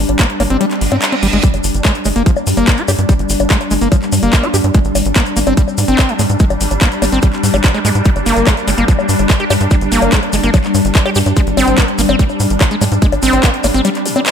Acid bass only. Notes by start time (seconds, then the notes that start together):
0.19 A#3
0.40 A#3
0.50 C4
0.61 G3
0.92 C4
1.12 C4
1.23 G3
1.33 G#3
1.43 G3
1.85 G#3
2.05 G#3
2.16 A#3
2.26 F3
2.57 A#3
2.78 G4
2.88 G4
3.09 G3
3.50 G#3
3.71 G#3
3.81 A#3
3.92 F3
4.23 A#3
4.43 G4
4.54 G4
4.75 G#3
5.16 A#3
5.37 A#3
5.47 C4
5.57 G3
5.88 C4
6.09 G#3
6.19 G#3
6.40 G#3
6.81 A#3
7.02 A#3
7.12 C4
7.23 G3
7.54 G3
7.74 G#3
7.85 G#3
8.06 G3
8.26 A#3
8.47 G#3
8.68 G#3
8.78 A#3
8.88 F3
9.40 G4
9.50 G4
9.71 G3
9.92 A#3
10.12 G#3
10.33 G#3
10.43 A#3
10.54 F3
11.06 G4
11.16 G4
11.37 G#3
11.57 C4
11.78 A#3
11.99 A#3
12.09 C4
12.19 G3
12.71 G#3
12.81 G#3
13.02 G#3
13.23 C4
13.43 A#3
13.64 A#3
13.74 C4
13.85 G3
14.16 C4